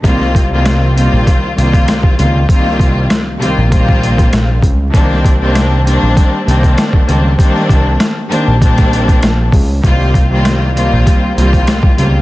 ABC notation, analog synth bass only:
X:1
M:4/4
L:1/16
Q:"Swing 16ths" 1/4=98
K:Eb
V:1 name="Analog synth bass" clef=bass
C,,6- C,, B,,, z2 C,,2 z2 _D,,2 | z2 C,,2 z3 B,,,4- B,,, B,,,2 _D,,2 | C,,6- C,, B,,, z2 C,,2 z2 _D,,2 | z2 C,,2 z3 B,,,4- B,,, B,,,2 _D,,2 |
C,,6- C,, B,,, z2 C,,2 z2 _D,,2 |]